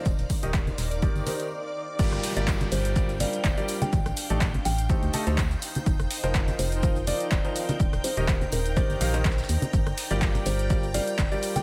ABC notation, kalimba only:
X:1
M:4/4
L:1/16
Q:"Swing 16ths" 1/4=124
K:Gm
V:1 name="Kalimba"
z16 | z6 c2 z2 d2 z3 g | z6 g6 z4 | z6 c2 z2 d2 z4 |
z2 c3 z B2 c6 z2 | z6 c2 z2 d2 z3 g |]